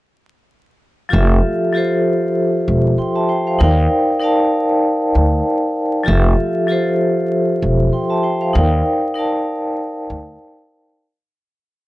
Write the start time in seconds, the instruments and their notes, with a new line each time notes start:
1.09 vibraphone F3 F4 G4 A4
1.13 upright bass F1, vibraphone E5
1.73 vibraphone F3 F4 G4 A4
1.77 vibraphone C5
2.68 upright bass E1
2.98 vibraphone G5 C6
3.15 vibraphone E5 A5
3.29 vibraphone C5 G5
3.47 vibraphone C5 F5
3.59 upright bass D#2, vibraphone D#4 A#4 D5 F5
3.63 vibraphone G5
4.19 vibraphone D#4 A#4 D5 F5
4.24 vibraphone A5
5.15 upright bass D2
6.04 vibraphone F3 F4 G4 A4
6.08 upright bass F1, vibraphone E5
6.67 vibraphone F3 F4 G4 A4
6.72 vibraphone C5
7.62 upright bass E1
7.93 vibraphone G5 C6
8.10 vibraphone E5 A5
8.23 vibraphone C5 G5
8.41 vibraphone C5 F5
8.53 upright bass D#2, vibraphone D#4 A#4 D5 F5
8.58 vibraphone G5
9.14 vibraphone D#4 A#4 D5 F5
9.19 vibraphone A5
10.10 upright bass D2